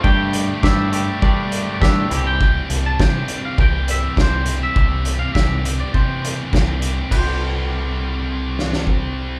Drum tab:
RD |----------------|----------------|----------------|x---------------|
HH |--x---x---x---x-|--x---x---x---x-|--x---x---x---x-|----------------|
SD |----o-------o---|----o-------o---|----o-------o---|----------oo----|
BD |o---o---o---o---|o---o---o---o---|o---o---o---o---|o-----------o---|